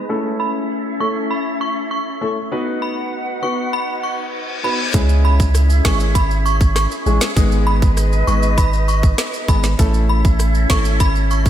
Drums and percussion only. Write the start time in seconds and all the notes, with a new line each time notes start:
4.94 kick, closed hi-hat, maracas
5.09 maracas
5.40 kick, maracas
5.54 cross-stick, closed hi-hat, maracas
5.70 maracas
5.85 kick, snare, maracas
6.00 maracas
6.15 kick, closed hi-hat, maracas
6.31 maracas
6.46 maracas
6.61 kick, maracas
6.76 cross-stick, snare, closed hi-hat, maracas
6.91 maracas
7.06 maracas
7.21 snare, maracas
7.37 kick, closed hi-hat, maracas
7.52 maracas
7.82 kick, maracas
7.97 cross-stick, closed hi-hat, maracas
8.12 maracas
8.28 maracas
8.43 maracas
8.58 kick, closed hi-hat, maracas
8.73 maracas
8.88 maracas
9.03 kick, maracas
9.18 cross-stick, snare, closed hi-hat, maracas
9.34 maracas
9.48 kick, maracas
9.63 snare, maracas
9.79 kick, closed hi-hat, maracas
9.94 maracas
10.25 kick, maracas
10.39 cross-stick, closed hi-hat, maracas
10.55 maracas
10.70 kick, snare, maracas
10.85 maracas
11.00 kick, closed hi-hat, maracas
11.15 maracas
11.31 maracas
11.46 kick, maracas